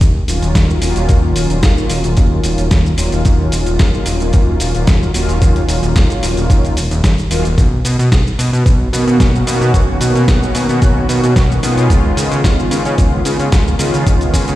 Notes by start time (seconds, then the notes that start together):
0.01 D#2, kick, closed hi-hat, shaker
0.28 D#1 D#3 F#3 A#3 C#4 F4, open hi-hat, shaker
0.42 D#1, closed hi-hat, shaker
0.55 D#2, kick, snare, closed hi-hat, shaker
0.70 shaker
0.82 D#1 D#3 F#3 A#3 C#4 F4, open hi-hat, shaker
0.96 D#1, closed hi-hat, shaker
1.09 D#2, kick, closed hi-hat, shaker
1.36 D#1, open hi-hat, shaker
1.50 D#1, closed hi-hat, shaker
1.63 D#2, kick, snare, closed hi-hat, shaker
1.78 shaker
1.90 D#1, open hi-hat, shaker
2.04 D#1, closed hi-hat, shaker
2.17 D#2, kick, closed hi-hat, shaker
2.44 D#1 D#3 F#3 A#3 C#4 F4, open hi-hat, shaker
2.58 D#1, closed hi-hat, shaker
2.71 D#2, kick, snare, closed hi-hat, shaker
2.86 shaker
2.97 D#1 D#3 F#3 A#3 C#4 F4, open hi-hat, shaker
3.12 D#1, closed hi-hat, shaker
3.25 D#2, kick, closed hi-hat, shaker
3.52 D#1, open hi-hat, shaker
3.66 D#1, closed hi-hat, shaker
3.79 D#2, kick, snare, closed hi-hat, shaker
3.94 shaker
4.06 D#1, open hi-hat, shaker
4.20 D#1, closed hi-hat, shaker
4.33 D#2, kick, closed hi-hat, shaker
4.60 D#1 D#3 F#3 A#3 C#4 F4, open hi-hat, shaker
4.75 D#1, closed hi-hat, shaker
4.87 D#2, kick, snare, closed hi-hat, shaker
5.03 shaker
5.14 D#1 D#3 F#3 A#3 C#4 F4, open hi-hat, shaker
5.29 D#1, closed hi-hat, shaker
5.42 D#2, kick, closed hi-hat, shaker
5.56 closed hi-hat
5.69 D#1, open hi-hat, shaker
5.83 D#1, closed hi-hat, shaker
5.96 D#2, kick, snare, closed hi-hat, shaker
6.10 closed hi-hat, shaker
6.23 D#1, open hi-hat, shaker
6.37 D#1, closed hi-hat, shaker
6.50 D#2, kick, closed hi-hat, shaker
6.65 closed hi-hat, shaker
6.77 D#1, open hi-hat, shaker
6.91 D#1, closed hi-hat, shaker
7.04 D#2, kick, snare, closed hi-hat, shaker
7.18 closed hi-hat, shaker
7.30 D#1 D#3 F#3 A#3 C#4 F4, open hi-hat, shaker
7.45 D#1, closed hi-hat, shaker
7.58 B1, kick, closed hi-hat, shaker
7.85 B2, open hi-hat, shaker
7.99 B2, closed hi-hat, shaker
8.12 B1, kick, snare, closed hi-hat, shaker
8.27 shaker
8.39 B2, open hi-hat, shaker
8.53 B2, closed hi-hat, shaker
8.66 B1, kick, closed hi-hat, shaker
8.93 B2 D#3 A#3 B3 C#4 F#4, open hi-hat, shaker
9.07 B2, closed hi-hat, shaker
9.20 B1, kick, snare, closed hi-hat, shaker
9.35 shaker
9.46 B2 D#3 A#3 B3 C#4 F#4, open hi-hat, shaker
9.61 B2, closed hi-hat, shaker
9.74 B1, kick, closed hi-hat, shaker
10.01 B2, open hi-hat, shaker
10.15 B2, closed hi-hat, shaker
10.28 B1, kick, snare, closed hi-hat, shaker
10.43 shaker
10.55 B2, open hi-hat, shaker
10.69 B2, closed hi-hat, shaker
10.82 B1, kick, closed hi-hat, shaker
11.09 B2 D#3 A#3 B3 C#4 F#4, open hi-hat, shaker
11.24 B2, closed hi-hat, shaker
11.36 B1, kick, snare, closed hi-hat, shaker
11.51 shaker
11.62 B2 D#3 G#3 B3 C#4 F4, open hi-hat, shaker
11.77 B2, closed hi-hat, shaker
11.90 C#2, kick, closed hi-hat, shaker
12.17 C#3, open hi-hat, shaker
12.31 C#3, closed hi-hat, shaker
12.44 C#2, kick, snare, closed hi-hat, shaker
12.59 shaker
12.71 C#3, open hi-hat, shaker
12.85 C#3, closed hi-hat, shaker
12.98 C#2, kick, closed hi-hat, shaker
13.25 C#3 D#3 G#3 B3 C#4 F4, open hi-hat, shaker
13.40 C#3, closed hi-hat, shaker
13.52 C#2, kick, snare, closed hi-hat, shaker
13.67 shaker
13.78 C#3 D#3 G#3 B3 C#4 F4, open hi-hat, shaker
13.94 C#3, closed hi-hat, shaker
14.07 C#2, kick, closed hi-hat, shaker
14.21 closed hi-hat, shaker
14.34 C#3, kick, open hi-hat, shaker
14.48 C#3, closed hi-hat, shaker